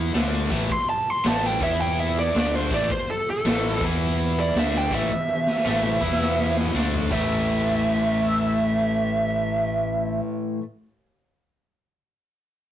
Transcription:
Already playing: fingered electric bass E2, overdriven electric guitar E3 B3 E4
0.14 fingered electric bass D2, overdriven electric guitar D3 A3 D4, snare, open hi-hat
0.50 fingered electric bass A1, overdriven electric guitar A2 E3 A3, kick
0.70 lead electric guitar C6, kick, open hi-hat
0.90 lead electric guitar A5
1.10 lead electric guitar C6
1.24 fingered electric bass A1, overdriven electric guitar A2 E3 A3, lead electric guitar A5, snare, open hi-hat
1.47 lead electric guitar G5
1.61 fingered electric bass E2, overdriven electric guitar E3 B3 E4, lead electric guitar E5, kick
1.80 lead electric guitar G5, open hi-hat
2.00 lead electric guitar E5
2.19 lead electric guitar D5
2.35 fingered electric bass D2, overdriven electric guitar D3 A3 D4, lead electric guitar D5, snare, open hi-hat
2.55 lead electric guitar C5
2.71 fingered electric bass A1, overdriven electric guitar A2 E3 A3, lead electric guitar D5, kick
2.90 lead electric guitar C5, kick, open hi-hat
3.11 lead electric guitar A4
3.30 lead electric guitar A4
3.45 fingered electric bass A1, overdriven electric guitar A2 E3 A3, snare, open hi-hat
3.81 fingered electric bass E2, overdriven electric guitar E3 B3 E4, kick
4.00 open hi-hat
4.40 lead electric guitar D5
4.55 fingered electric bass D2, overdriven electric guitar D3 A3 D4, snare, open hi-hat
4.59 lead electric guitar E5
4.78 lead electric guitar G5
4.91 fingered electric bass A1, overdriven electric guitar A2 E3 A3, lead electric guitar E5, kick
5.10 high tom
5.29 high tom
5.47 snare
5.57 snare
5.65 fingered electric bass A1, overdriven electric guitar A2 E3 A3, snare
5.83 mid tom
6.00 fingered electric bass E2, overdriven electric guitar E3 B3 E4, kick
6.12 snare
6.21 snare
6.40 snare
6.57 snare
6.66 mid tom
6.74 fingered electric bass D2, overdriven electric guitar D3 A3 D4, snare
6.94 floor tom
7.09 fingered electric bass A1, overdriven electric guitar A2 E3, lead electric guitar E5, kick, crash
7.13 overdriven electric guitar A3

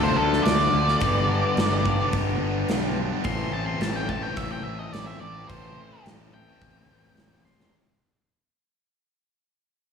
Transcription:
Already playing: fingered electric bass D2, overdriven electric guitar D3 F3 A3 D4, distorted electric guitar D3 A3 D4 F4
0.03 lead electric guitar C5
0.16 fingered electric bass D2, overdriven electric guitar D3 F3 A3, lead electric guitar A4
0.21 overdriven electric guitar D4
0.33 snare
0.43 fingered electric bass D2, overdriven electric guitar D3 F3, lead electric guitar D5, snare, open hi-hat
0.47 overdriven electric guitar A3 D4
0.59 overdriven electric guitar F3 A3 D4
0.74 fingered electric bass D2, overdriven electric guitar D3 F3 A3 D4
0.87 overdriven electric guitar F3 A3 D4, snare
1.00 fingered electric bass G1, distorted electric guitar G2 D3 G3 B3 D4, overdriven electric guitar G2 D3 G3 B3 D4, kick, open hi-hat
1.05 distorted electric guitar G4
1.30 overdriven electric guitar D3 G3 B3 D4
1.57 fingered electric bass G1, overdriven electric guitar G2 D3 G3 B3 D4, snare, open hi-hat
1.72 overdriven electric guitar G3 B3 D4
1.85 distorted electric guitar G2 D3 G3 B3 D4 G4, muted overdriven electric guitar stroke, kick
2.00 overdriven electric guitar G3 B3 D4
2.13 fingered electric bass G1, overdriven electric guitar D3 G3 B3 D4, kick, open hi-hat
2.42 fingered electric bass G1, overdriven electric guitar D3 G3 B3 D4
2.69 fingered electric bass B1, overdriven electric guitar G2 D3 G3, snare, open hi-hat
2.73 overdriven electric guitar B3 D4
2.84 overdriven electric guitar G3 B3 D4
2.98 overdriven electric guitar D3 G3 B3 D4
3.11 overdriven electric guitar G3 B3 D4
3.23 fingered electric bass A1, distorted electric guitar A2 E3 C4 E4, overdriven electric guitar A2 E3 A3 C4, lead electric guitar C6, kick, open hi-hat
3.27 overdriven electric guitar E4, distorted electric guitar A4
3.52 fingered electric bass A1, overdriven electric guitar E3 A3 C4 E4, lead electric guitar A5
3.66 lead electric guitar C6
3.79 fingered electric bass A1, overdriven electric guitar A2 E3 A3 C4 E4, lead electric guitar A5, snare, open hi-hat
3.94 overdriven electric guitar A3 C4 E4, lead electric guitar G5
4.08 distorted electric guitar A2 E3 C4 E4 A4, lead electric guitar A5, muted overdriven electric guitar stroke, kick
4.21 overdriven electric guitar A3 C4 E4, lead electric guitar G5
4.36 fingered electric bass A1, overdriven electric guitar E3 A3 C4 E4, lead electric guitar E5, kick, open hi-hat
4.52 lead electric guitar G5
4.63 fingered electric bass A1, overdriven electric guitar E3 A3 C4 E4, lead electric guitar E5
4.79 lead electric guitar D#5
4.92 fingered electric bass A1, overdriven electric guitar A2 E3 A3 C4 E4, lead electric guitar D5, snare, open hi-hat
5.07 overdriven electric guitar A3 C4 E4, lead electric guitar E5
5.21 fingered electric bass A1, overdriven electric guitar E3 A3 C4 E4, lead electric guitar D5
5.36 overdriven electric guitar A3 C4 E4
5.48 fingered electric bass A1, distorted electric guitar A2 E3 C4 E4, overdriven electric guitar A2 E3, lead electric guitar C5, kick, open hi-hat
5.52 overdriven electric guitar A3 C4 E4, distorted electric guitar A4
5.78 overdriven electric guitar E3 A3 C4 E4
6.05 fingered electric bass A1, overdriven electric guitar A2 E3 A3 C4 E4, snare, open hi-hat
6.20 overdriven electric guitar A3 C4 E4
6.32 distorted electric guitar A2 E3 C4 E4 A4, lead electric guitar G5, muted overdriven electric guitar stroke
6.48 overdriven electric guitar A3 C4 E4
6.61 fingered electric bass A1, overdriven electric guitar E3 A3 C4 E4, kick, open hi-hat
6.90 fingered electric bass A1, overdriven electric guitar E3 A3 C4 E4
7.17 fingered electric bass A1, overdriven electric guitar A2 E3 A3 C4 E4, snare, open hi-hat
7.32 overdriven electric guitar A3 C4 E4
7.45 overdriven electric guitar E3 A3 C4 E4, lead electric guitar C6, snare
7.59 overdriven electric guitar A3 C4 E4, snare

